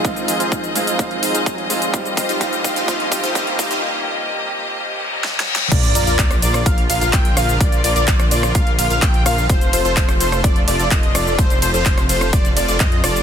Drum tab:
CC |------------------------------------------------|------------------------------------------------|------------------------------------------------|x-----------------------------------------------|
RD |------------------------------------------------|------------------------------------------------|------------------------------------------------|------x-----------x-----------x-----------x-----|
HH |x--x--o--x--x--x--o--x--x--x--o--x--x--x--o--x--|x--x--o--x--x--x--o--x--x--x--o--x--x--x--o--x--|------------------------------------------------|x--x--o--x--x--x--o--x--x--x--o--x--x--x--o-----|
SH |x--x--x--x--x--x--x--x--x-----x--x--x-----x--x--|x--x--x--x--x--x--x--x--x-----x--x--x-----x--x--|------------------------------------------------|x--x--x--x--x--x--x--x--x-----x--x--x-----x--x--|
CP |------------------------------------------------|------------------------------------------------|------------------------------------------------|------------x-----------------------x-----------|
SD |------------------------------------------------|------------------------------------------------|------------------------------------o---o---o---|---------------r-----r--------------------r-----|
BD |o-----------o-----------o-----------o-----------|o-----o-----o-----o-----o-----o-----o-----o-----|------------------------------------------------|o-----------o-----------o-----------o-----------|

CC |------------------------------------------------|------------------------------------------------|------------------------------------------------|
RD |------x-----------x-----------x-----------x-----|------x-----------x-----------x-----------x-----|------x-----------x-----------x-----------x-----|
HH |x--x--o--x--x--x--o--x--x--x--o--x--x--x--o-----|x--x--o--x--x--x--o--x--x--x--o--x--x--x--o-----|x--x--o--x--x--x--o--x--x--x--o--x--x--x--o-----|
SH |x--x--x--x--x--x--x--x--x-----x--x--x-----x--x--|x--x--x--x--x--x--x--x--x-----x--x--x-----x--x--|x--x--x--x--x--x--x--x--x--x--x--x--x-----x--x--|
CP |------------x-----------------------x-----------|------------x-----------------------x-----------|------------x-----------------------x-----------|
SD |---------------r-----r--------------------r-----|---------------r-----r--------------------r-----|---------------r-----r--------------------r-----|
BD |o-----------o-----------o-----------o-----------|o-----------o-----------o-----------o-----------|o-----------o-----------o-----------o-----------|